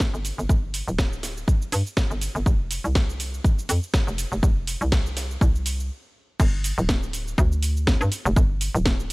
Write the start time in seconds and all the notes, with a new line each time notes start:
0.00 kick, snare, shaker
0.14 G1, shaker
0.25 open hi-hat, shaker
0.38 G1, shaker
0.49 G1, kick, shaker
0.74 open hi-hat, shaker
0.88 D1, shaker
0.99 kick, snare, shaker
1.13 shaker
1.23 snare, open hi-hat, shaker
1.37 shaker
1.48 kick, shaker
1.62 shaker
1.72 G2, open hi-hat, shaker
1.86 shaker
1.97 kick, snare, shaker
2.11 G1, shaker
2.21 open hi-hat, shaker
2.35 G1, shaker
2.46 F1, kick, shaker
2.71 open hi-hat, shaker
2.84 C2, shaker
2.95 kick, snare, shaker
3.09 shaker
3.20 open hi-hat, shaker
3.34 shaker
3.44 kick, shaker
3.59 shaker
3.69 F2, open hi-hat, shaker
3.83 shaker
3.94 kick, snare, shaker
4.07 F1, shaker
4.18 open hi-hat, shaker
4.32 F1, shaker
4.43 F1, kick, shaker
4.67 open hi-hat, shaker
4.81 C2, shaker
4.92 kick, snare, shaker
5.06 shaker
5.17 snare, open hi-hat, shaker
5.31 shaker
5.41 C2, kick, shaker
5.55 shaker
5.66 open hi-hat, shaker
5.80 shaker
6.40 G1, kick, crash, shaker
6.64 open hi-hat, shaker
6.78 D1, shaker
6.89 kick, snare, shaker
7.03 shaker
7.13 open hi-hat, shaker
7.28 shaker
7.38 D2, kick, shaker
7.52 shaker
7.63 open hi-hat, shaker
7.77 shaker
7.87 kick, snare, shaker
8.01 G2, shaker
8.12 open hi-hat, shaker
8.25 F1, shaker
8.36 G1, kick, shaker
8.61 open hi-hat, shaker
8.75 D1, shaker
8.86 kick, snare, shaker
9.00 shaker